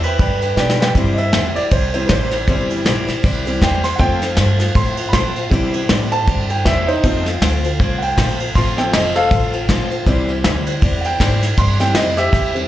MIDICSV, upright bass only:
0, 0, Header, 1, 3, 480
1, 0, Start_track
1, 0, Key_signature, 0, "major"
1, 0, Tempo, 379027
1, 1213, Time_signature, 4, 2, 24, 8
1, 16055, End_track
2, 0, Start_track
2, 0, Title_t, "Upright bass"
2, 0, Program_c, 0, 32
2, 0, Note_on_c, 0, 40, 91
2, 236, Note_off_c, 0, 40, 0
2, 246, Note_on_c, 0, 43, 87
2, 712, Note_off_c, 0, 43, 0
2, 720, Note_on_c, 0, 47, 89
2, 1192, Note_off_c, 0, 47, 0
2, 1205, Note_on_c, 0, 43, 85
2, 1676, Note_off_c, 0, 43, 0
2, 1689, Note_on_c, 0, 40, 92
2, 1953, Note_off_c, 0, 40, 0
2, 2175, Note_on_c, 0, 36, 93
2, 2642, Note_off_c, 0, 36, 0
2, 2654, Note_on_c, 0, 33, 96
2, 3122, Note_off_c, 0, 33, 0
2, 3136, Note_on_c, 0, 31, 79
2, 3604, Note_off_c, 0, 31, 0
2, 3618, Note_on_c, 0, 34, 96
2, 3880, Note_off_c, 0, 34, 0
2, 4104, Note_on_c, 0, 36, 90
2, 4570, Note_off_c, 0, 36, 0
2, 4577, Note_on_c, 0, 40, 98
2, 5047, Note_off_c, 0, 40, 0
2, 5060, Note_on_c, 0, 41, 84
2, 5529, Note_off_c, 0, 41, 0
2, 5538, Note_on_c, 0, 43, 100
2, 6009, Note_off_c, 0, 43, 0
2, 6019, Note_on_c, 0, 45, 87
2, 6490, Note_off_c, 0, 45, 0
2, 6501, Note_on_c, 0, 46, 93
2, 6972, Note_off_c, 0, 46, 0
2, 6985, Note_on_c, 0, 48, 90
2, 7454, Note_off_c, 0, 48, 0
2, 7472, Note_on_c, 0, 45, 100
2, 7938, Note_off_c, 0, 45, 0
2, 7946, Note_on_c, 0, 43, 87
2, 8415, Note_off_c, 0, 43, 0
2, 8430, Note_on_c, 0, 40, 96
2, 8898, Note_off_c, 0, 40, 0
2, 8910, Note_on_c, 0, 41, 79
2, 9378, Note_off_c, 0, 41, 0
2, 9390, Note_on_c, 0, 38, 101
2, 9858, Note_off_c, 0, 38, 0
2, 9877, Note_on_c, 0, 36, 96
2, 10342, Note_off_c, 0, 36, 0
2, 10354, Note_on_c, 0, 34, 103
2, 10820, Note_off_c, 0, 34, 0
2, 10831, Note_on_c, 0, 33, 91
2, 11298, Note_off_c, 0, 33, 0
2, 11312, Note_on_c, 0, 29, 97
2, 11777, Note_off_c, 0, 29, 0
2, 11791, Note_on_c, 0, 33, 93
2, 12256, Note_off_c, 0, 33, 0
2, 12266, Note_on_c, 0, 34, 96
2, 12732, Note_off_c, 0, 34, 0
2, 12747, Note_on_c, 0, 36, 91
2, 13211, Note_off_c, 0, 36, 0
2, 13231, Note_on_c, 0, 38, 97
2, 13693, Note_off_c, 0, 38, 0
2, 13704, Note_on_c, 0, 40, 98
2, 14167, Note_off_c, 0, 40, 0
2, 14185, Note_on_c, 0, 44, 97
2, 14646, Note_off_c, 0, 44, 0
2, 14663, Note_on_c, 0, 43, 82
2, 15123, Note_off_c, 0, 43, 0
2, 15132, Note_on_c, 0, 41, 101
2, 15596, Note_off_c, 0, 41, 0
2, 15614, Note_on_c, 0, 40, 92
2, 16055, Note_off_c, 0, 40, 0
2, 16055, End_track
3, 0, Start_track
3, 0, Title_t, "Muted upright bass strokes"
3, 1981, Note_on_c, 9, 29, 37
3, 2108, Note_off_c, 9, 29, 0
3, 3902, Note_on_c, 9, 29, 42
3, 4029, Note_off_c, 9, 29, 0
3, 16055, End_track
0, 0, End_of_file